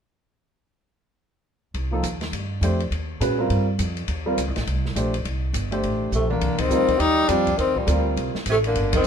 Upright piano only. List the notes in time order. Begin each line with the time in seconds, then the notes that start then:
1.91 F3 A#3 D#4 A4
2.62 A3 D4 G4 C5
3.20 G#3 C#4 F#4 B4
3.39 G3 C4 F4 A#4
4.26 G3 C4 F4 A#4
4.96 A3 D4 G4 C5
5.71 A3 D4 G4 C5
6.70 G3 C4 F4 A#4
7.28 G3 C4 F4 C5
7.87 G3 C4 F4 A#4